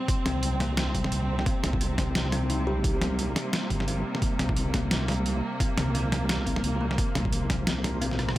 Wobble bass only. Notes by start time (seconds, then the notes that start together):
0.26 C2
0.95 C2
1.12 C2
1.64 C2
2.77 A#1
2.84 C2
3.70 G1
4.39 C2
5.77 C2
6.46 C2
6.64 C2
7.15 C2
8.02 A#1